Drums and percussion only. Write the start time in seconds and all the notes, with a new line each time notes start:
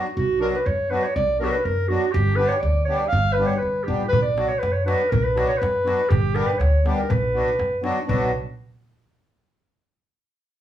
0.05 darbuka tek
4.13 darbuka dum
4.38 darbuka tek
4.63 darbuka tek
4.76 darbuka tek
4.88 darbuka tek
5.13 darbuka dum
5.27 darbuka tek
5.38 darbuka tek
5.63 darbuka tek
5.75 darbuka tek
5.88 darbuka tek
6.12 darbuka dum
6.24 darbuka tek
6.36 darbuka tek
6.61 darbuka tek
6.86 darbuka tek
7.10 darbuka dum
7.24 darbuka tek
7.49 darbuka tek
7.60 darbuka tek
7.84 darbuka tek
8.09 darbuka dum